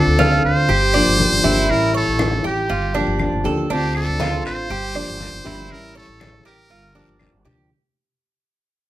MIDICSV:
0, 0, Header, 1, 7, 480
1, 0, Start_track
1, 0, Tempo, 500417
1, 1625, Time_signature, 4, 2, 24, 8
1, 8534, End_track
2, 0, Start_track
2, 0, Title_t, "Muted trumpet"
2, 0, Program_c, 0, 59
2, 0, Note_on_c, 0, 69, 107
2, 425, Note_off_c, 0, 69, 0
2, 430, Note_on_c, 0, 72, 125
2, 1636, Note_on_c, 0, 70, 107
2, 1650, Note_off_c, 0, 72, 0
2, 1871, Note_off_c, 0, 70, 0
2, 1881, Note_on_c, 0, 69, 101
2, 2321, Note_off_c, 0, 69, 0
2, 2366, Note_on_c, 0, 67, 91
2, 3279, Note_off_c, 0, 67, 0
2, 3557, Note_on_c, 0, 67, 101
2, 3776, Note_off_c, 0, 67, 0
2, 3797, Note_on_c, 0, 69, 105
2, 4239, Note_off_c, 0, 69, 0
2, 4280, Note_on_c, 0, 72, 127
2, 5483, Note_on_c, 0, 70, 108
2, 5497, Note_off_c, 0, 72, 0
2, 5715, Note_off_c, 0, 70, 0
2, 5726, Note_on_c, 0, 69, 97
2, 6163, Note_off_c, 0, 69, 0
2, 6194, Note_on_c, 0, 70, 102
2, 7110, Note_off_c, 0, 70, 0
2, 8534, End_track
3, 0, Start_track
3, 0, Title_t, "Cuban tres"
3, 0, Program_c, 1, 25
3, 0, Note_on_c, 1, 62, 83
3, 168, Note_off_c, 1, 62, 0
3, 180, Note_on_c, 1, 65, 72
3, 647, Note_off_c, 1, 65, 0
3, 659, Note_on_c, 1, 67, 72
3, 894, Note_off_c, 1, 67, 0
3, 900, Note_on_c, 1, 74, 82
3, 1368, Note_off_c, 1, 74, 0
3, 1381, Note_on_c, 1, 64, 79
3, 1849, Note_off_c, 1, 64, 0
3, 1864, Note_on_c, 1, 73, 81
3, 2331, Note_off_c, 1, 73, 0
3, 2343, Note_on_c, 1, 67, 75
3, 2577, Note_off_c, 1, 67, 0
3, 2584, Note_on_c, 1, 65, 77
3, 2818, Note_off_c, 1, 65, 0
3, 2824, Note_on_c, 1, 62, 93
3, 3291, Note_off_c, 1, 62, 0
3, 3310, Note_on_c, 1, 69, 80
3, 3541, Note_off_c, 1, 69, 0
3, 3551, Note_on_c, 1, 62, 88
3, 4015, Note_off_c, 1, 62, 0
3, 4031, Note_on_c, 1, 65, 80
3, 4495, Note_off_c, 1, 65, 0
3, 4511, Note_on_c, 1, 67, 81
3, 4742, Note_off_c, 1, 67, 0
3, 4753, Note_on_c, 1, 74, 81
3, 5215, Note_off_c, 1, 74, 0
3, 5232, Note_on_c, 1, 64, 80
3, 5695, Note_off_c, 1, 64, 0
3, 5710, Note_on_c, 1, 73, 81
3, 6173, Note_off_c, 1, 73, 0
3, 6189, Note_on_c, 1, 67, 75
3, 6420, Note_off_c, 1, 67, 0
3, 6429, Note_on_c, 1, 65, 74
3, 6660, Note_off_c, 1, 65, 0
3, 6667, Note_on_c, 1, 62, 87
3, 7131, Note_off_c, 1, 62, 0
3, 7147, Note_on_c, 1, 67, 82
3, 7378, Note_off_c, 1, 67, 0
3, 8534, End_track
4, 0, Start_track
4, 0, Title_t, "Nylon-string guitar"
4, 0, Program_c, 2, 24
4, 0, Note_on_c, 2, 50, 68
4, 0, Note_on_c, 2, 57, 72
4, 0, Note_on_c, 2, 60, 77
4, 0, Note_on_c, 2, 65, 80
4, 652, Note_off_c, 2, 50, 0
4, 659, Note_off_c, 2, 57, 0
4, 663, Note_off_c, 2, 60, 0
4, 668, Note_off_c, 2, 65, 0
4, 908, Note_on_c, 2, 67, 74
4, 916, Note_on_c, 2, 62, 67
4, 923, Note_on_c, 2, 58, 65
4, 930, Note_on_c, 2, 53, 62
4, 1131, Note_off_c, 2, 53, 0
4, 1137, Note_off_c, 2, 67, 0
4, 1140, Note_off_c, 2, 62, 0
4, 1142, Note_on_c, 2, 53, 52
4, 1144, Note_off_c, 2, 58, 0
4, 1154, Note_on_c, 2, 58, 58
4, 1158, Note_on_c, 2, 62, 60
4, 1164, Note_on_c, 2, 67, 57
4, 1366, Note_off_c, 2, 67, 0
4, 1374, Note_off_c, 2, 53, 0
4, 1376, Note_off_c, 2, 62, 0
4, 1378, Note_on_c, 2, 67, 72
4, 1380, Note_off_c, 2, 58, 0
4, 1387, Note_on_c, 2, 62, 66
4, 1392, Note_on_c, 2, 58, 63
4, 1401, Note_on_c, 2, 53, 61
4, 1609, Note_off_c, 2, 53, 0
4, 1612, Note_off_c, 2, 67, 0
4, 1613, Note_on_c, 2, 52, 79
4, 1616, Note_off_c, 2, 62, 0
4, 1619, Note_off_c, 2, 58, 0
4, 1627, Note_on_c, 2, 55, 78
4, 1636, Note_on_c, 2, 61, 80
4, 1646, Note_on_c, 2, 64, 75
4, 2571, Note_off_c, 2, 52, 0
4, 2578, Note_off_c, 2, 55, 0
4, 2582, Note_off_c, 2, 61, 0
4, 2587, Note_off_c, 2, 64, 0
4, 2832, Note_on_c, 2, 67, 78
4, 2841, Note_on_c, 2, 62, 66
4, 2847, Note_on_c, 2, 58, 62
4, 2855, Note_on_c, 2, 53, 59
4, 3051, Note_off_c, 2, 53, 0
4, 3060, Note_off_c, 2, 58, 0
4, 3060, Note_off_c, 2, 67, 0
4, 3063, Note_on_c, 2, 53, 57
4, 3064, Note_off_c, 2, 62, 0
4, 3072, Note_on_c, 2, 58, 59
4, 3079, Note_on_c, 2, 62, 64
4, 3082, Note_on_c, 2, 67, 60
4, 3290, Note_off_c, 2, 67, 0
4, 3295, Note_off_c, 2, 53, 0
4, 3298, Note_off_c, 2, 62, 0
4, 3300, Note_off_c, 2, 58, 0
4, 3302, Note_on_c, 2, 67, 80
4, 3310, Note_on_c, 2, 62, 70
4, 3315, Note_on_c, 2, 58, 67
4, 3324, Note_on_c, 2, 53, 56
4, 3535, Note_off_c, 2, 67, 0
4, 3538, Note_off_c, 2, 53, 0
4, 3539, Note_off_c, 2, 62, 0
4, 3541, Note_off_c, 2, 58, 0
4, 3541, Note_on_c, 2, 50, 75
4, 3550, Note_on_c, 2, 57, 78
4, 3564, Note_on_c, 2, 60, 85
4, 3573, Note_on_c, 2, 65, 85
4, 4495, Note_off_c, 2, 50, 0
4, 4499, Note_off_c, 2, 57, 0
4, 4506, Note_off_c, 2, 60, 0
4, 4510, Note_off_c, 2, 65, 0
4, 4749, Note_on_c, 2, 67, 71
4, 4758, Note_on_c, 2, 62, 70
4, 4764, Note_on_c, 2, 58, 66
4, 4768, Note_on_c, 2, 53, 63
4, 4971, Note_off_c, 2, 53, 0
4, 4979, Note_off_c, 2, 67, 0
4, 4982, Note_off_c, 2, 58, 0
4, 4983, Note_off_c, 2, 62, 0
4, 4983, Note_on_c, 2, 53, 57
4, 4994, Note_on_c, 2, 58, 62
4, 4999, Note_on_c, 2, 62, 61
4, 5006, Note_on_c, 2, 67, 60
4, 5212, Note_off_c, 2, 67, 0
4, 5215, Note_off_c, 2, 53, 0
4, 5219, Note_off_c, 2, 62, 0
4, 5221, Note_off_c, 2, 58, 0
4, 5223, Note_on_c, 2, 67, 76
4, 5231, Note_on_c, 2, 62, 73
4, 5238, Note_on_c, 2, 58, 65
4, 5246, Note_on_c, 2, 53, 58
4, 5455, Note_off_c, 2, 67, 0
4, 5456, Note_off_c, 2, 53, 0
4, 5459, Note_off_c, 2, 62, 0
4, 5460, Note_on_c, 2, 52, 70
4, 5463, Note_off_c, 2, 58, 0
4, 5471, Note_on_c, 2, 55, 76
4, 5482, Note_on_c, 2, 61, 75
4, 5491, Note_on_c, 2, 64, 83
4, 6413, Note_off_c, 2, 52, 0
4, 6418, Note_off_c, 2, 55, 0
4, 6424, Note_off_c, 2, 61, 0
4, 6428, Note_off_c, 2, 64, 0
4, 6662, Note_on_c, 2, 67, 68
4, 6668, Note_on_c, 2, 62, 66
4, 6674, Note_on_c, 2, 58, 60
4, 6679, Note_on_c, 2, 53, 57
4, 6890, Note_off_c, 2, 53, 0
4, 6894, Note_off_c, 2, 67, 0
4, 6895, Note_off_c, 2, 58, 0
4, 6897, Note_off_c, 2, 62, 0
4, 6901, Note_on_c, 2, 53, 54
4, 6907, Note_on_c, 2, 58, 53
4, 6915, Note_on_c, 2, 62, 55
4, 6921, Note_on_c, 2, 67, 58
4, 7132, Note_off_c, 2, 67, 0
4, 7133, Note_off_c, 2, 53, 0
4, 7136, Note_off_c, 2, 58, 0
4, 7140, Note_off_c, 2, 62, 0
4, 7144, Note_on_c, 2, 67, 69
4, 7152, Note_on_c, 2, 62, 67
4, 7158, Note_on_c, 2, 58, 60
4, 7166, Note_on_c, 2, 53, 58
4, 7374, Note_off_c, 2, 67, 0
4, 7378, Note_off_c, 2, 62, 0
4, 7381, Note_off_c, 2, 58, 0
4, 7385, Note_off_c, 2, 53, 0
4, 8534, End_track
5, 0, Start_track
5, 0, Title_t, "Upright bass"
5, 0, Program_c, 3, 32
5, 59, Note_on_c, 3, 38, 91
5, 403, Note_off_c, 3, 38, 0
5, 421, Note_on_c, 3, 38, 83
5, 650, Note_off_c, 3, 38, 0
5, 657, Note_on_c, 3, 31, 103
5, 1003, Note_off_c, 3, 31, 0
5, 1017, Note_on_c, 3, 31, 87
5, 1249, Note_off_c, 3, 31, 0
5, 1260, Note_on_c, 3, 31, 94
5, 1376, Note_off_c, 3, 31, 0
5, 1382, Note_on_c, 3, 31, 101
5, 1611, Note_off_c, 3, 31, 0
5, 1623, Note_on_c, 3, 33, 106
5, 1966, Note_off_c, 3, 33, 0
5, 1979, Note_on_c, 3, 33, 92
5, 2325, Note_off_c, 3, 33, 0
5, 2345, Note_on_c, 3, 33, 85
5, 2574, Note_off_c, 3, 33, 0
5, 2587, Note_on_c, 3, 31, 100
5, 2929, Note_off_c, 3, 31, 0
5, 2945, Note_on_c, 3, 31, 90
5, 3174, Note_off_c, 3, 31, 0
5, 3188, Note_on_c, 3, 31, 93
5, 3301, Note_off_c, 3, 31, 0
5, 3306, Note_on_c, 3, 38, 106
5, 3535, Note_off_c, 3, 38, 0
5, 3549, Note_on_c, 3, 38, 110
5, 3890, Note_off_c, 3, 38, 0
5, 3908, Note_on_c, 3, 38, 90
5, 4266, Note_off_c, 3, 38, 0
5, 4266, Note_on_c, 3, 33, 91
5, 4495, Note_off_c, 3, 33, 0
5, 4506, Note_on_c, 3, 31, 103
5, 4848, Note_off_c, 3, 31, 0
5, 4869, Note_on_c, 3, 31, 92
5, 5096, Note_off_c, 3, 31, 0
5, 5107, Note_on_c, 3, 31, 98
5, 5221, Note_off_c, 3, 31, 0
5, 5227, Note_on_c, 3, 31, 106
5, 5455, Note_off_c, 3, 31, 0
5, 5466, Note_on_c, 3, 33, 100
5, 5808, Note_off_c, 3, 33, 0
5, 5825, Note_on_c, 3, 33, 89
5, 6167, Note_off_c, 3, 33, 0
5, 6183, Note_on_c, 3, 33, 85
5, 6412, Note_off_c, 3, 33, 0
5, 6423, Note_on_c, 3, 31, 107
5, 6766, Note_off_c, 3, 31, 0
5, 6781, Note_on_c, 3, 31, 89
5, 7010, Note_off_c, 3, 31, 0
5, 7021, Note_on_c, 3, 31, 99
5, 7136, Note_off_c, 3, 31, 0
5, 7142, Note_on_c, 3, 38, 100
5, 7371, Note_off_c, 3, 38, 0
5, 8534, End_track
6, 0, Start_track
6, 0, Title_t, "Muted nylon-string guitar strokes"
6, 665, Note_on_c, 9, 29, 58
6, 761, Note_off_c, 9, 29, 0
6, 2587, Note_on_c, 9, 29, 68
6, 2683, Note_off_c, 9, 29, 0
6, 4508, Note_on_c, 9, 29, 67
6, 4603, Note_off_c, 9, 29, 0
6, 6425, Note_on_c, 9, 29, 64
6, 6521, Note_off_c, 9, 29, 0
6, 8534, End_track
7, 0, Start_track
7, 0, Title_t, "Drums"
7, 181, Note_on_c, 9, 63, 102
7, 277, Note_off_c, 9, 63, 0
7, 663, Note_on_c, 9, 63, 37
7, 759, Note_off_c, 9, 63, 0
7, 900, Note_on_c, 9, 75, 68
7, 901, Note_on_c, 9, 63, 35
7, 996, Note_off_c, 9, 75, 0
7, 997, Note_off_c, 9, 63, 0
7, 1142, Note_on_c, 9, 63, 96
7, 1238, Note_off_c, 9, 63, 0
7, 1381, Note_on_c, 9, 63, 91
7, 1477, Note_off_c, 9, 63, 0
7, 1623, Note_on_c, 9, 63, 40
7, 1625, Note_on_c, 9, 75, 62
7, 1719, Note_off_c, 9, 63, 0
7, 1720, Note_off_c, 9, 75, 0
7, 1862, Note_on_c, 9, 63, 37
7, 1957, Note_off_c, 9, 63, 0
7, 2102, Note_on_c, 9, 63, 104
7, 2105, Note_on_c, 9, 75, 66
7, 2198, Note_off_c, 9, 63, 0
7, 2201, Note_off_c, 9, 75, 0
7, 2346, Note_on_c, 9, 63, 37
7, 2442, Note_off_c, 9, 63, 0
7, 2584, Note_on_c, 9, 63, 36
7, 2680, Note_off_c, 9, 63, 0
7, 2823, Note_on_c, 9, 63, 37
7, 2919, Note_off_c, 9, 63, 0
7, 3063, Note_on_c, 9, 63, 93
7, 3065, Note_on_c, 9, 75, 74
7, 3159, Note_off_c, 9, 63, 0
7, 3161, Note_off_c, 9, 75, 0
7, 3304, Note_on_c, 9, 63, 88
7, 3400, Note_off_c, 9, 63, 0
7, 3547, Note_on_c, 9, 63, 38
7, 3549, Note_on_c, 9, 74, 69
7, 3643, Note_off_c, 9, 63, 0
7, 3644, Note_off_c, 9, 74, 0
7, 3789, Note_on_c, 9, 75, 75
7, 3790, Note_on_c, 9, 63, 37
7, 3885, Note_off_c, 9, 75, 0
7, 3886, Note_off_c, 9, 63, 0
7, 4025, Note_on_c, 9, 63, 105
7, 4030, Note_on_c, 9, 73, 74
7, 4121, Note_off_c, 9, 63, 0
7, 4126, Note_off_c, 9, 73, 0
7, 4269, Note_on_c, 9, 73, 79
7, 4365, Note_off_c, 9, 73, 0
7, 4505, Note_on_c, 9, 74, 75
7, 4511, Note_on_c, 9, 63, 35
7, 4601, Note_off_c, 9, 74, 0
7, 4607, Note_off_c, 9, 63, 0
7, 4748, Note_on_c, 9, 63, 38
7, 4750, Note_on_c, 9, 75, 70
7, 4844, Note_off_c, 9, 63, 0
7, 4846, Note_off_c, 9, 75, 0
7, 4988, Note_on_c, 9, 73, 71
7, 4990, Note_on_c, 9, 63, 88
7, 5084, Note_off_c, 9, 73, 0
7, 5086, Note_off_c, 9, 63, 0
7, 5230, Note_on_c, 9, 73, 74
7, 5233, Note_on_c, 9, 63, 92
7, 5326, Note_off_c, 9, 73, 0
7, 5329, Note_off_c, 9, 63, 0
7, 5469, Note_on_c, 9, 75, 67
7, 5470, Note_on_c, 9, 74, 72
7, 5472, Note_on_c, 9, 63, 36
7, 5565, Note_off_c, 9, 75, 0
7, 5566, Note_off_c, 9, 74, 0
7, 5568, Note_off_c, 9, 63, 0
7, 5714, Note_on_c, 9, 63, 36
7, 5810, Note_off_c, 9, 63, 0
7, 5948, Note_on_c, 9, 73, 72
7, 5948, Note_on_c, 9, 75, 65
7, 5957, Note_on_c, 9, 63, 101
7, 6043, Note_off_c, 9, 73, 0
7, 6044, Note_off_c, 9, 75, 0
7, 6053, Note_off_c, 9, 63, 0
7, 6186, Note_on_c, 9, 73, 74
7, 6196, Note_on_c, 9, 63, 35
7, 6282, Note_off_c, 9, 73, 0
7, 6291, Note_off_c, 9, 63, 0
7, 6428, Note_on_c, 9, 74, 74
7, 6430, Note_on_c, 9, 63, 37
7, 6524, Note_off_c, 9, 74, 0
7, 6526, Note_off_c, 9, 63, 0
7, 6901, Note_on_c, 9, 75, 71
7, 6904, Note_on_c, 9, 73, 73
7, 6913, Note_on_c, 9, 63, 93
7, 6997, Note_off_c, 9, 75, 0
7, 7000, Note_off_c, 9, 73, 0
7, 7009, Note_off_c, 9, 63, 0
7, 7142, Note_on_c, 9, 73, 77
7, 7147, Note_on_c, 9, 64, 85
7, 7238, Note_off_c, 9, 73, 0
7, 7243, Note_off_c, 9, 64, 0
7, 8534, End_track
0, 0, End_of_file